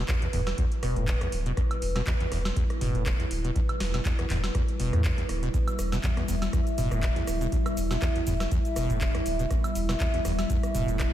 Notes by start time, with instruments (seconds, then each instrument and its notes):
Already playing: analog synth pad G3 E4 B4
0.08 acid bass E2, kick, cross-stick, clap, closed hi-hat
0.22 acid bass E2, closed hi-hat
0.33 sub bass E1, acid bass E2, mid tom, open hi-hat
0.47 cross-stick, snare, closed hi-hat, high woodblock
0.58 acid bass E2, kick, closed hi-hat
0.72 closed hi-hat
0.83 sub bass E1, acid bass B2, cross-stick, open hi-hat
0.96 sub bass E1, acid bass A2, closed hi-hat, mid tom
1.08 kick, clap, closed hi-hat
1.21 acid bass E2, cross-stick, closed hi-hat
1.32 sub bass D1, open hi-hat
1.46 acid bass B2, closed hi-hat
1.57 acid bass E2, kick, cross-stick, closed hi-hat
1.71 closed hi-hat, high woodblock
1.82 sub bass E1, open hi-hat
1.96 acid bass B2, cross-stick, snare, closed hi-hat, high woodblock
2.07 acid bass E2, kick, clap, closed hi-hat
2.20 acid bass E2, closed hi-hat
2.32 sub bass E1, acid bass E2, cross-stick, open hi-hat
2.45 snare, closed hi-hat, high woodblock
2.56 acid bass E2, kick, closed hi-hat
2.70 cross-stick, closed hi-hat
2.81 sub bass E1, acid bass B2, mid tom, open hi-hat
2.95 sub bass E1, acid bass A2, closed hi-hat
3.06 kick, cross-stick, clap, closed hi-hat
3.20 acid bass E2, closed hi-hat
3.31 sub bass D1, open hi-hat
3.44 acid bass B2, closed hi-hat
3.56 acid bass E2, kick, closed hi-hat
3.69 closed hi-hat, high woodblock
3.80 sub bass E1, cross-stick, snare, open hi-hat
3.94 acid bass B2, snare, closed hi-hat, high woodblock
4.05 acid bass E2, kick, clap, closed hi-hat
4.19 acid bass E2, cross-stick, closed hi-hat
4.30 sub bass E1, acid bass E2, clap, mid tom, open hi-hat
4.44 snare, closed hi-hat, high woodblock
4.55 acid bass E2, kick, cross-stick, closed hi-hat
4.68 closed hi-hat
4.79 sub bass E1, acid bass B2, open hi-hat
4.93 sub bass E2, acid bass A2, cross-stick, closed hi-hat, mid tom
5.04 kick, clap, closed hi-hat
5.18 acid bass E2, closed hi-hat
5.29 sub bass D1, cross-stick, open hi-hat
5.43 acid bass B2, closed hi-hat
5.54 acid bass E2, analog synth pad E5, kick, closed hi-hat, shaker
5.68 closed hi-hat, high woodblock, shaker
5.79 sub bass E1, cross-stick, open hi-hat, shaker
5.92 acid bass B2, snare, closed hi-hat, high woodblock, shaker
6.03 acid bass E2, kick, clap, closed hi-hat, shaker
6.17 acid bass E2, cross-stick, closed hi-hat
6.28 sub bass E1, acid bass E2, open hi-hat, shaker
6.42 snare, closed hi-hat, high woodblock, shaker
6.53 acid bass E2, kick, cross-stick, closed hi-hat, shaker
6.67 closed hi-hat, shaker
6.78 sub bass E1, acid bass B2, mid tom, open hi-hat, shaker
6.91 sub bass E1, acid bass A2, cross-stick, closed hi-hat, shaker
7.03 kick, clap, closed hi-hat, shaker
7.16 acid bass E2, closed hi-hat
7.27 sub bass D1, cross-stick, open hi-hat, shaker
7.41 acid bass B2, closed hi-hat, shaker
7.52 acid bass E2, kick, closed hi-hat, shaker
7.66 cross-stick, closed hi-hat, high woodblock, shaker
7.77 sub bass E1, open hi-hat, shaker
7.91 acid bass B2, snare, closed hi-hat, high woodblock, shaker
8.02 acid bass E2, kick, cross-stick, clap, closed hi-hat, shaker
8.15 acid bass E2, closed hi-hat
8.27 sub bass E1, acid bass E2, mid tom, open hi-hat, shaker
8.40 cross-stick, snare, closed hi-hat, high woodblock, shaker
8.51 acid bass E2, kick, closed hi-hat, shaker
8.65 closed hi-hat, shaker
8.76 sub bass E1, acid bass B2, cross-stick, open hi-hat, shaker
8.90 sub bass E1, acid bass A2, closed hi-hat, mid tom, shaker
9.01 kick, clap, closed hi-hat, shaker
9.15 acid bass E2, cross-stick, closed hi-hat
9.26 sub bass D1, open hi-hat, shaker
9.39 acid bass B2, closed hi-hat, shaker
9.51 acid bass E2, kick, cross-stick, closed hi-hat, shaker
9.64 closed hi-hat, high woodblock, shaker
9.75 sub bass E1, open hi-hat, shaker
9.89 acid bass B2, cross-stick, snare, closed hi-hat, high woodblock, shaker
10.00 acid bass E2, kick, clap, closed hi-hat, shaker
10.14 acid bass E2, closed hi-hat
10.25 sub bass E1, acid bass E2, cross-stick, open hi-hat, shaker
10.39 snare, closed hi-hat, high woodblock, shaker
10.50 acid bass E2, kick, closed hi-hat, shaker
10.63 cross-stick, closed hi-hat, shaker
10.75 sub bass E1, acid bass B2, mid tom, open hi-hat, shaker
10.88 sub bass E1, acid bass A2, closed hi-hat, shaker
10.99 kick, cross-stick, clap, closed hi-hat, shaker